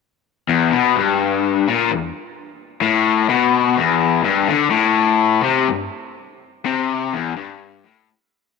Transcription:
0.49 0.72 E2 loud
0.72 0.96 B2 loud
0.96 1.66 G2 loud
1.68 1.91 A#2 loud
1.91 2.10 E2 medium
2.81 3.29 A2 loud
3.29 3.77 B2 loud
3.77 4.23 E2 loud
4.24 4.48 G2 loud
4.48 4.70 D3 loud
4.71 5.43 A2 loud
5.44 5.68 C3 loud
5.69 5.89 G2 medium
6.65 7.13 C3 loud
7.13 7.36 E2 loud
7.36 7.84 G2 medium
7.84 8.08 A2 loud

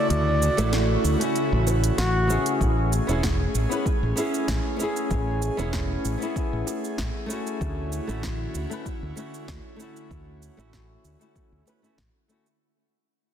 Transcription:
0.00 0.54 C#3 medium
0.00 2.56 C#3 medium
0.00 0.53 A3 medium
0.00 2.56 A3 medium
0.00 0.55 E4 medium
0.00 2.56 E4 medium
0.00 0.57 F#4 medium
0.00 2.56 F#4 medium
0.10 0.48 D2 loud
0.10 1.00 D5 loud
0.10 closed hi-hat soft
0.10 shaker soft
0.42 shaker medium
0.57 0.95 A1 medium
0.57 1.17 C#3 medium
0.57 1.16 A3 loud
0.57 1.17 E4 medium
0.57 1.18 F#4 loud
0.57 closed hi-hat medium
0.57 high bongo medium
0.57 shaker soft
0.73 snare medium
0.73 closed hi-hat soft
0.73 shaker soft
1.04 1.15 D2 medium
1.04 shaker medium
1.18 2.25 A3 medium
1.18 2.26 C#4 medium
1.18 closed hi-hat medium
1.22 2.27 E4 medium
1.22 2.27 F#4 medium
1.22 shaker soft
1.36 closed hi-hat soft
1.36 shaker soft
1.52 1.89 A1 medium
1.67 high bongo soft
1.67 shaker medium
1.84 closed hi-hat medium
1.84 shaker soft
1.98 2.36 A1 loud
1.98 2.57 F#4 loud
1.98 snare loud
1.98 closed hi-hat soft
1.98 shaker soft
2.28 2.91 B3 medium
2.28 2.92 C#4 medium
2.28 2.92 E4 medium
2.28 2.93 G#4 medium
2.28 shaker medium
2.46 closed hi-hat medium
2.46 shaker soft
2.61 2.99 A1 medium
2.61 12.57 A3 medium
2.61 7.57 C#4 medium
2.61 7.57 G#4 medium
2.61 kick loud
2.61 shaker soft
2.93 shaker medium
3.07 3.46 E1 medium
3.07 3.22 B3 medium
3.07 3.23 C#4 medium
3.07 3.23 E4 medium
3.07 3.24 G#4 medium
3.07 shaker soft
3.23 kick loud
3.23 snare loud
3.23 shaker soft
3.55 3.65 A1 medium
3.55 shaker medium
3.69 3.84 B3 medium
3.69 3.85 C#4 medium
3.69 3.85 E4 medium
3.69 3.86 B4 medium
3.69 shaker soft
3.86 kick loud
3.86 shaker soft
4.03 4.12 A1 medium
4.16 4.75 B3 medium
4.16 4.76 C#4 medium
4.16 4.76 E4 medium
4.16 4.77 G#4 medium
4.16 shaker medium
4.34 shaker soft
4.48 4.59 A1 medium
4.48 kick loud
4.48 snare loud
4.48 shaker soft
4.76 5.53 B3 medium
4.76 5.54 C#4 medium
4.76 shaker medium
4.81 5.55 E4 medium
4.81 5.56 G#4 medium
4.96 shaker soft
5.11 5.49 A1 medium
5.11 kick loud
5.11 shaker soft
5.42 shaker medium
5.57 5.96 E1 medium
5.57 6.16 B3 loud
5.57 6.17 C#4 medium
5.57 6.17 E4 medium
5.57 6.18 G#4 loud
5.57 shaker soft
5.73 kick loud
5.73 snare medium
5.73 shaker soft
6.05 6.15 A1 medium
6.05 shaker medium
6.18 7.25 B3 medium
6.18 7.26 C#4 medium
6.18 shaker soft
6.23 7.27 E4 medium
6.23 7.28 G#4 medium
6.36 kick loud
6.36 shaker soft
6.53 6.62 A1 medium
6.67 high bongo soft
6.67 shaker medium
6.84 shaker soft
6.98 7.09 A1 medium
6.98 kick loud
6.98 snare medium
6.98 shaker soft
7.26 8.03 A3 medium
7.26 8.04 C#4 medium
7.26 shaker medium
7.30 8.05 E4 medium
7.30 8.06 F#4 medium
7.47 shaker soft
7.61 7.99 D2 medium
7.61 12.57 D3 medium
7.61 12.57 C#4 medium
7.61 12.57 E4 medium
7.61 12.57 F#4 medium
7.61 kick loud
7.61 shaker soft
7.92 shaker medium
8.07 8.46 A1 medium
8.07 8.22 A3 medium
8.07 8.23 C#4 medium
8.07 8.23 E4 medium
8.07 8.24 F#4 medium
8.07 shaker soft
8.23 kick loud
8.23 snare medium
8.23 shaker soft
8.55 8.65 D2 medium
8.55 shaker medium
8.70 8.85 A3 medium
8.70 8.85 C#4 medium
8.70 8.86 E4 medium
8.70 8.86 B4 medium
8.70 shaker soft
8.86 kick medium
8.86 shaker soft
9.03 9.12 D2 medium
9.16 9.75 A3 medium
9.16 9.76 C#4 medium
9.16 9.76 E4 medium
9.16 9.77 F#4 medium
9.16 shaker medium
9.34 shaker soft
9.48 9.59 D2 medium
9.48 kick loud
9.48 snare medium
9.48 shaker soft
9.76 10.53 A3 medium
9.76 10.54 C#4 medium
9.76 shaker medium
9.81 10.55 E4 medium
9.81 10.56 F#4 medium
9.96 shaker soft
10.11 10.48 D2 medium
10.11 kick medium
10.11 shaker soft
10.43 shaker medium
10.57 10.96 A1 medium
10.57 11.16 A3 medium
10.57 11.17 C#4 medium
10.57 11.17 E4 medium
10.57 11.18 F#4 loud
10.57 shaker soft
10.73 kick medium
10.73 snare medium
10.73 shaker soft
11.05 11.15 D2 medium
11.05 shaker medium
11.19 11.63 A3 medium
11.19 11.64 C#4 medium
11.19 11.64 E4 medium
11.19 11.65 F#4 medium
11.19 shaker soft
11.36 kick medium
11.36 shaker soft
11.52 11.61 D2 medium
11.66 11.79 A3 medium
11.66 11.79 C#4 medium
11.66 11.80 E4 medium
11.66 11.81 B4 medium
11.66 high bongo soft
11.66 shaker medium
11.82 11.97 A3 medium
11.82 11.97 C#4 medium
11.82 11.98 E4 medium
11.82 11.99 F#4 medium
11.82 shaker soft
11.98 12.09 A1 medium
11.98 kick loud
11.98 snare medium
11.98 shaker soft
12.28 12.45 A3 medium
12.28 12.46 C#4 medium
12.28 12.46 E4 medium
12.28 12.47 F#4 medium
12.28 shaker medium
12.46 shaker soft

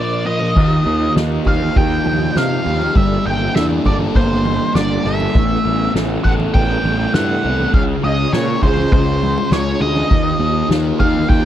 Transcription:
0.00 0.24 A#2 medium
0.00 0.25 F3 medium
0.00 0.26 A#3 loud
0.00 0.53 D4 medium
0.00 0.53 A#4 medium
0.00 0.52 C5 medium
0.00 0.24 D5 medium
0.25 0.54 A#2 medium
0.25 0.42 F3 medium
0.25 0.39 A#3 medium
0.25 1.12 D#5 loud
0.40 0.55 F3 soft
0.40 0.54 A#3 medium
0.56 0.78 D#2 medium
0.56 2.06 D#3 medium
0.56 2.94 D#4 medium
0.56 2.94 F4 medium
0.56 5.32 G4 medium
0.56 kick loud
0.56 crash loud
0.86 1.07 D#2 medium
0.86 1.76 A#3 medium
0.86 ride medium
1.16 1.37 D#2 medium
1.16 2.36 D#4 medium
1.16 snare loud
1.16 ride medium
1.45 1.68 D#2 medium
1.45 2.66 G4 medium
1.45 1.77 F5 loud
1.45 kick medium
1.45 ride medium
1.45 low conga medium
1.60 high conga medium
1.76 1.98 D#2 medium
1.76 2.96 A#3 medium
1.76 2.37 G5 loud
1.76 kick loud
1.76 ride loud
2.05 2.28 D#2 medium
2.05 2.95 F3 medium
2.05 ride medium
2.05 high conga medium
2.36 2.57 C3 loud
2.36 2.97 D#4 medium
2.36 2.96 F5 loud
2.36 snare loud
2.36 ride loud
2.36 high conga medium
2.66 2.88 D#2 medium
2.66 2.96 G4 medium
2.66 ride medium
2.66 low conga medium
2.82 high conga medium
2.95 3.17 G1 medium
2.95 4.46 G3 medium
2.95 5.33 A#3 medium
2.95 7.70 A4 medium
2.95 3.26 E5 loud
2.95 kick loud
2.95 ride loud
3.25 3.47 G1 medium
3.25 4.15 A#3 medium
3.25 3.55 G5 loud
3.25 ride medium
3.55 3.77 E2 medium
3.55 4.75 D4 medium
3.55 3.64 E5 medium
3.55 snare loud
3.55 ride medium
3.85 4.07 G1 medium
3.85 5.05 A4 medium
3.85 3.94 D5 medium
3.85 kick medium
3.85 ride medium
3.85 low conga medium
4.00 high conga medium
4.15 4.58 G1 medium
4.15 5.35 A#3 medium
4.15 4.72 C5 medium
4.15 kick loud
4.15 ride medium
4.45 5.35 G3 medium
4.45 ride medium
4.45 high conga medium
4.75 4.97 G1 medium
4.75 5.36 D4 medium
4.75 5.06 D5 medium
4.75 snare loud
4.75 ride loud
4.75 high conga medium
5.05 5.27 G1 medium
5.05 5.36 A4 medium
5.05 5.91 E5 medium
5.05 snare soft
5.05 ride medium
5.05 low conga medium
5.20 high conga medium
5.35 5.57 A1 loud
5.35 6.84 A3 medium
5.35 7.71 B3 medium
5.35 7.71 E4 medium
5.35 kick loud
5.35 ride loud
5.65 5.87 A1 medium
5.65 6.54 B3 medium
5.65 ride medium
5.94 6.16 A1 medium
5.94 7.13 E4 medium
5.94 snare loud
5.94 ride loud
6.24 6.46 A1 medium
6.24 7.43 A4 medium
6.24 6.32 F#5 loud
6.24 kick medium
6.24 ride medium
6.40 high conga medium
6.54 6.76 A1 medium
6.54 7.74 B3 medium
6.54 7.14 G5 loud
6.54 kick loud
6.54 ride loud
6.84 7.05 A1 medium
6.84 7.74 A3 medium
6.84 ride medium
6.84 high conga medium
7.14 7.35 G2 medium
7.14 7.74 E4 medium
7.14 7.70 F#5 medium
7.14 snare loud
7.14 ride loud
7.14 high conga medium
7.44 7.66 C2 medium
7.44 7.74 A4 medium
7.44 ride medium
7.44 low conga medium
7.60 high conga medium
7.73 7.95 C#2 loud
7.73 9.22 C#3 medium
7.73 10.09 C#4 medium
7.73 11.45 F4 medium
7.73 10.09 G#4 medium
7.73 7.82 F5 loud
7.73 kick loud
7.73 ride loud
8.03 8.25 C#2 medium
8.03 8.91 C#4 medium
8.03 8.31 D#5 medium
8.03 ride medium
8.33 8.55 A#2 medium
8.33 9.50 F4 medium
8.33 8.62 C#5 medium
8.33 snare loud
8.33 ride medium
8.62 8.84 C#2 medium
8.62 9.79 G#4 medium
8.62 8.92 C5 medium
8.62 kick medium
8.62 ride medium
8.62 low conga medium
8.77 high conga medium
8.92 9.35 C#2 medium
8.92 10.11 C#4 medium
8.92 9.48 C5 medium
8.92 kick loud
8.92 ride loud
9.22 10.11 G#3 medium
9.22 ride medium
9.22 high conga medium
9.38 low conga medium
9.51 9.73 C#2 medium
9.51 10.11 F4 medium
9.51 9.81 C#5 medium
9.51 snare loud
9.51 ride loud
9.51 high conga medium
9.80 10.02 D2 medium
9.80 10.11 G#4 medium
9.80 10.67 D#5 medium
9.80 ride medium
9.80 low conga medium
9.96 high conga medium
10.10 10.32 D#2 medium
10.10 11.45 D#3 medium
10.10 11.45 D#4 medium
10.10 11.45 G4 medium
10.10 kick loud
10.10 ride medium
10.39 10.61 D#2 medium
10.39 11.28 A#3 medium
10.39 ride medium
10.69 10.91 D#2 medium
10.69 11.45 D#4 medium
10.69 snare loud
10.69 ride medium
11.00 11.22 D#2 medium
11.00 11.45 G4 medium
11.00 11.28 F5 loud
11.00 kick medium
11.00 ride medium
11.00 low conga medium
11.14 high conga medium
11.29 11.45 D#2 medium
11.29 11.45 A#3 medium
11.29 11.45 G5 loud
11.29 kick loud
11.29 ride loud

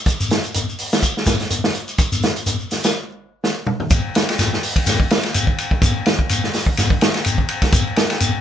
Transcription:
0.06 kick medium
0.06 closed hi-hat medium
0.06 shekere medium
0.20 shekere medium
0.30 snare medium
0.30 closed hi-hat medium
0.44 closed hi-hat soft
0.44 shekere soft
0.54 closed hi-hat medium
0.54 shekere medium
0.69 shekere soft
0.78 open hi-hat medium
0.78 shekere soft
0.92 snare medium
0.92 shekere medium
1.03 kick medium
1.03 closed hi-hat medium
1.03 shekere medium
1.17 snare soft
1.26 kick medium
1.26 snare medium
1.26 closed hi-hat medium
1.26 shekere medium
1.40 snare soft
1.40 closed hi-hat soft
1.50 closed hi-hat medium
1.50 shekere medium
1.64 snare medium
1.74 closed hi-hat medium
1.74 shekere soft
1.88 shekere medium
1.98 kick loud
1.98 closed hi-hat medium
1.98 shekere medium
2.12 shekere medium
2.23 snare medium
2.23 closed hi-hat soft
2.36 closed hi-hat soft
2.36 shekere soft
2.46 closed hi-hat medium
2.46 shekere medium
2.60 shekere soft
2.70 snare soft
2.70 open hi-hat medium
2.70 shekere soft
2.84 snare medium
2.84 closed hi-hat soft
2.84 shekere medium
3.44 snare soft
3.67 mid tom medium
3.80 floor tom medium
3.90 kick loud
3.90 ride bell medium
3.90 shekere medium
4.15 snare medium
4.15 ride bell medium
4.15 shekere soft
4.29 snare soft
4.29 ride bell medium
4.39 snare soft
4.39 ride bell medium
4.39 shekere medium
4.53 snare soft
4.63 open hi-hat medium
4.63 shekere soft
4.76 kick medium
4.76 ride bell medium
4.86 snare soft
4.86 ride bell medium
4.86 shekere loud
5.00 kick medium
5.10 snare medium
5.10 ride bell soft
5.10 shekere soft
5.23 snare soft
5.23 ride bell soft
5.34 ride bell medium
5.34 shekere medium
5.47 kick medium
5.58 ride bell medium
5.58 shekere soft
5.71 kick medium
5.82 kick loud
5.82 ride bell medium
5.82 shekere medium
6.06 snare medium
6.06 ride bell soft
6.06 shekere soft
6.19 kick medium
6.29 ride bell soft
6.29 shekere medium
6.44 snare soft
6.53 snare soft
6.53 open hi-hat medium
6.53 shekere soft
6.66 kick medium
6.77 snare soft
6.77 ride bell medium
6.77 shekere loud
6.90 kick medium
7.01 snare medium
7.01 ride bell medium
7.01 shekere soft
7.14 snare soft
7.14 ride bell soft
7.24 ride bell medium
7.24 shekere medium
7.38 kick medium
7.48 ride bell medium
7.48 shekere soft
7.62 kick medium
7.62 snare soft
7.62 ride bell medium
7.72 kick loud
7.72 ride bell medium
7.72 shekere medium
7.96 snare medium
7.96 ride bell soft
7.96 shekere soft
8.10 snare soft
8.10 ride bell medium
8.20 ride bell medium
8.20 shekere loud

